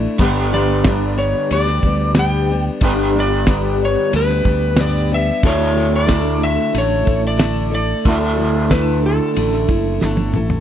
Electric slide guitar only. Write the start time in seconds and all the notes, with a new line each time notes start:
0.54 D5
1.18 C#5
1.53 D5
2.19 G5
3.20 D5
3.85 C#5
4.16 B4
4.80 D5
5.14 E5
5.47 C#5
5.96 D5
6.43 E5
6.78 C#5
7.27 D5
7.75 D5
8.71 B4
9.06 A4